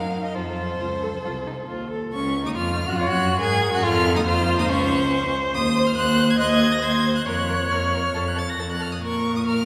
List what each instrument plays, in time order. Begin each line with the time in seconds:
Already playing: cello F#3, viola D#4, violin A#4 F5
0.25 violin D#5
0.35 cello F2, viola F4, violin A4 C5
0.80 cello C#2, viola F4
1.03 viola A4
1.23 cello C2, viola F4
1.46 viola D#4
1.68 cello D#2, viola F4
1.90 viola A4
2.12 cello C#2, violin C#4 C#6
2.44 cello D#2, violin D#4 D#6
2.55 cello F2, violin F4 F6
2.87 cello F#2, violin F#4 F#6
2.96 cello F2, violin F4 F6, viola C#5
3.07 cello F#2, violin F#4 F#6
3.40 cello G#2, violin G#4 G#6, viola A#4
3.72 cello F#2, violin F#4 F#6
3.83 cello F2, violin F4 F6, viola A4
4.15 cello D#2, violin D#4 D#6
4.26 cello F2, violin F4 F6, viola C5
4.57 cello D#2, violin D#4 D#6
4.68 cello C#2, violin C#4 C#6
5.53 cello D#2, violin C5 D#6
5.77 violin C5
5.86 violin F6
5.96 cello D#2, viola C5, violin C5 F#6
6.19 violin C5
6.30 violin G#6
6.38 cello D#2, violin C5 F#6, viola D#5
6.51 violin G#6
6.61 violin C5
6.72 violin A#6
6.82 cello D#2, viola C5, violin C5 G#6
7.06 violin C5
7.15 violin F#6
7.26 cello F2, violin A#4 F#6, viola C#5
7.49 violin A#4
7.71 cello F2, violin A#4 F6
7.94 violin A#4
8.14 cello F2, violin A4
8.27 violin F#6
8.36 violin A4 A6
8.49 violin A#6
8.58 cello F2, violin A4 A6
8.71 violin F#6
8.80 violin A4 F6
8.92 violin D#6
9.02 cello A#2, violin A#4 C#6
9.36 violin D#6
9.46 violin A#4 F6